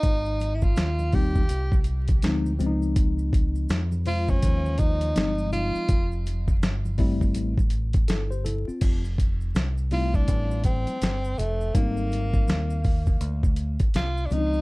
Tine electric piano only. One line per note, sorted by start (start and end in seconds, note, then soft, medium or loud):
1.13 1.41 G3 medium
1.13 1.42 A#3 medium
1.13 1.42 C4 medium
1.13 1.42 D#4 medium
2.23 2.51 F3 medium
2.23 2.51 G#3 medium
2.23 2.52 C4 medium
2.23 2.52 D#4 medium
2.59 3.78 F3 medium
2.59 3.78 G#3 medium
2.59 3.79 C4 medium
2.59 2.68 C#4 medium
2.66 3.82 D#4 medium
4.06 5.10 F3 medium
4.06 5.10 G#3 medium
4.06 5.11 F4 medium
4.06 5.10 C5 medium
5.15 5.89 F3 medium
5.15 5.89 G#3 medium
5.15 5.89 C4 medium
5.15 5.89 D#4 medium
6.98 7.53 G3 loud
6.98 7.53 A3 medium
6.98 7.53 C4 medium
6.98 7.54 E4 medium
8.08 8.30 E4 medium
8.08 8.30 A4 medium
8.31 8.45 G4 medium
8.31 8.44 C5 medium
8.45 8.67 E4 medium
8.45 8.66 A4 medium
8.68 9.03 C4 medium
8.68 9.02 F4 medium
9.91 10.96 G3 medium
9.91 10.96 A3 medium
9.91 10.96 C4 medium
9.91 10.96 E4 medium
11.74 12.78 G3 medium
11.74 12.79 A#3 medium
11.74 11.83 B3 medium
11.74 12.79 D#4 medium
11.82 12.82 C4 medium
14.30 14.61 F3 medium
14.30 14.61 G#3 medium
14.30 14.61 C4 medium
14.30 14.39 D4 medium
14.38 14.61 D#4 medium